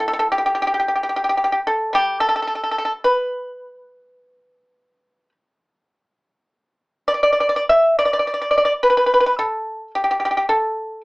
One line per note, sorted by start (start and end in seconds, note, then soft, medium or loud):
0.00 3.02 A2 soft
0.08 0.12 A4 medium
0.13 0.18 A4 soft
0.19 0.26 A4 medium
0.32 0.37 G4 medium
0.38 0.45 G4 soft
0.46 0.53 G4 medium
0.55 0.61 G4 soft
0.62 0.66 G4 soft
0.67 0.73 G4 soft
0.74 0.78 G4 soft
0.80 0.87 G4 soft
0.88 0.94 G4 soft
0.96 1.02 G4 soft
1.03 1.08 G4 soft
1.09 1.15 G4 soft
1.16 1.23 G4 soft
1.24 1.28 G4 soft
1.29 1.36 G4 soft
1.37 1.43 G4 soft
1.44 1.51 G4 soft
1.52 1.58 G4 soft
1.67 1.92 A4 medium
1.93 5.32 G3 soft
1.93 2.19 G4 medium
2.20 2.27 A4 medium
2.29 2.35 A4 soft
2.36 2.41 A4 soft
2.42 2.46 A4 soft
2.47 2.54 A4 soft
2.55 2.62 A4 soft
2.63 2.70 A4 soft
2.71 2.77 A4 soft
2.78 2.84 A4 soft
2.85 2.91 A4 soft
3.04 5.29 B4 medium
7.08 7.13 D5 medium
7.14 7.22 D5 soft
7.23 7.30 D5 soft
7.33 7.39 D5 soft
7.40 7.47 D5 soft
7.49 7.55 D5 soft
7.56 7.63 D5 medium
7.69 7.96 E5 medium
7.99 8.04 D5 medium
8.05 8.12 D5 soft
8.13 8.18 D5 soft
8.19 8.26 D5 soft
8.27 8.33 D5 soft
8.34 8.40 D5 soft
8.42 8.49 D5 soft
8.51 8.56 D5 soft
8.58 8.64 D5 soft
8.65 8.72 D5 soft
8.83 8.89 B4 medium
8.90 8.96 B4 soft
8.97 9.05 B4 soft
9.06 9.13 B4 soft
9.14 9.19 B4 soft
9.20 9.25 B4 soft
9.26 9.34 B4 medium
9.39 9.91 A4 medium
9.95 10.02 G4 medium
10.04 10.10 G4 soft
10.11 10.17 G4 soft
10.20 10.24 G4 soft
10.25 10.30 G4 soft
10.31 10.36 G4 soft
10.37 10.44 G4 soft
10.49 11.01 A4 medium